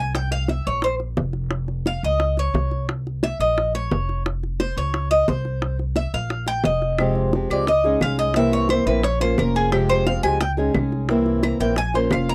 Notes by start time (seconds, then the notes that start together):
Already playing: C2
0.00 G#5
0.15 G5, high bongo
0.31 F5, high bongo
0.48 E5, high bongo
0.67 A#1 C#5
0.82 C5, high bongo
1.00 high bongo
1.17 F1, high bongo, low bongo
1.33 high bongo
1.51 high bongo
1.68 high bongo
1.86 F5, high bongo
2.03 C#2 D#5
2.20 high bongo
2.37 C#5, high bongo
2.54 C2, high bongo, low bongo
2.71 high bongo
2.89 high bongo
3.07 high bongo
3.23 E5, high bongo
3.39 A#1 D#5
3.58 high bongo
3.75 C#5, high bongo
3.91 F1, high bongo, low bongo
4.09 high bongo
4.26 high bongo
4.43 high bongo
4.60 C5, high bongo
4.77 C#2 C#5
4.94 high bongo
5.11 D#5, high bongo
5.28 C2 C5, high bongo, low bongo
5.45 high bongo
5.62 high bongo
5.79 high bongo
5.96 E5, high bongo
6.14 A#1 F5
6.30 high bongo
6.46 G5, high bongo
6.64 F1 D#5, high bongo, low bongo
6.82 high bongo
6.98 C3 F3 G#3 C4 G4, high bongo, claves
7.15 high bongo
7.33 F3 G#3 C4 G4, high bongo
7.50 C#2 F3 G#3 C4 G4 D5, claves
7.67 D#5, muted steel-string acoustic guitar stroke, high bongo
7.84 G#3 C#4 D#4 G#4, high bongo
8.01 C2 G#3 C#4 D#4 G#4 F5, high bongo, low bongo, claves
8.18 D#5, high bongo
8.34 C3 E3 A#3 C4 E4 E5, high bongo
8.52 C#5, high bongo
8.69 E3 A#3 C4 E4 C5, high bongo, claves
8.86 A#1 E3 A#3 C4 E4 B4
9.03 C#5, muted steel-string acoustic guitar stroke, high bongo
9.20 A#3 C#4 F4 C5, high bongo
9.38 F1 F3 A#3 C#4 F4 A#4, high bongo, low bongo, claves
9.55 G#4, high bongo
9.72 C3 F3 G#3 C4 G4, high bongo, claves
9.89 C5, high bongo
10.07 F3 G#3 C4 G4 F5, high bongo
10.23 C#2 F3 G#3 C4 G4 G#5, claves
10.41 G5, muted steel-string acoustic guitar stroke, high bongo
10.57 G#3 C#4 D#4 G#4, high bongo
10.74 C2 G#3 C#4 D#4 G#4, high bongo, low bongo, claves
10.92 high bongo
11.09 C3 E3 A#3 C4 E4, high bongo
11.26 high bongo
11.43 E3 A#3 C4 E4 A#5, high bongo, claves
11.60 A#1 E3 A#3 C4 E4 G5
11.76 G#5, muted steel-string acoustic guitar stroke, high bongo
11.94 A#3 C#4 F4 C5, high bongo
12.11 F1 F3 A#3 C#4 F4 F5, high bongo, low bongo, claves
12.29 A#5, high bongo